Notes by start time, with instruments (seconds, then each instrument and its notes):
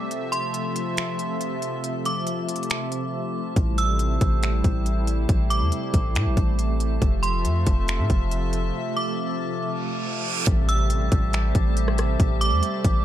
Already playing: analog synth pad C3 A3 E5, synth texture A5
0.11 analog synth pad F3, synth texture F4 E5, closed hi-hat
0.32 synth bell C6, closed hi-hat
0.54 closed hi-hat
0.76 closed hi-hat
0.97 finger snap, closed hi-hat
1.19 closed hi-hat
1.41 closed hi-hat
1.62 closed hi-hat
1.84 closed hi-hat
2.05 synth bell D6, closed hi-hat
2.27 closed hi-hat
2.49 closed hi-hat
2.56 closed hi-hat
2.63 closed hi-hat
2.70 finger snap, closed hi-hat
2.92 closed hi-hat
3.56 808-style bass A1, analog synth pad G3 A3 E4, synth texture G4 C5, kick, closed hi-hat
3.78 synth bell E6, closed hi-hat
3.99 closed hi-hat
4.21 808-style bass A1, kick, closed hi-hat
4.43 finger snap, closed hi-hat
4.64 808-style bass A1, kick, closed hi-hat
4.86 closed hi-hat
5.07 closed hi-hat
5.29 808-style bass A1, kick, closed hi-hat
5.50 synth bell D6, closed hi-hat
5.61 808-style bass E2
5.72 closed hi-hat
5.94 808-style bass A1, kick, closed hi-hat
6.15 808-style bass A2, finger snap, closed hi-hat
6.26 808-style bass A1
6.37 808-style bass A1, kick, closed hi-hat
6.59 closed hi-hat
6.80 closed hi-hat
7.02 808-style bass F1, analog synth pad C3 F3 E5, synth texture F4 E5 A5, kick, closed hi-hat
7.23 synth bell C6, closed hi-hat
7.45 808-style bass F2, closed hi-hat
7.67 808-style bass F1, kick, closed hi-hat
7.88 finger snap, closed hi-hat
7.99 808-style bass A2
8.10 808-style bass F1, kick, closed hi-hat
8.31 closed hi-hat
8.53 closed hi-hat
8.97 synth bell D6
9.61 reverse cymbal
10.47 808-style bass A1, analog synth pad C3 G3 A3 E5, synth texture G4 C5 A5, kick, closed hi-hat, impact
10.69 synth bell E6, closed hi-hat
10.90 closed hi-hat
11.12 808-style bass A1, kick, closed hi-hat
11.33 finger snap, closed hi-hat
11.55 808-style bass A1, kick, closed hi-hat
11.77 closed hi-hat
11.88 cross-stick
11.98 cross-stick, closed hi-hat
12.20 808-style bass A1, kick, closed hi-hat
12.41 synth bell D6, closed hi-hat
12.52 808-style bass E2
12.63 closed hi-hat
12.84 808-style bass A1, kick, closed hi-hat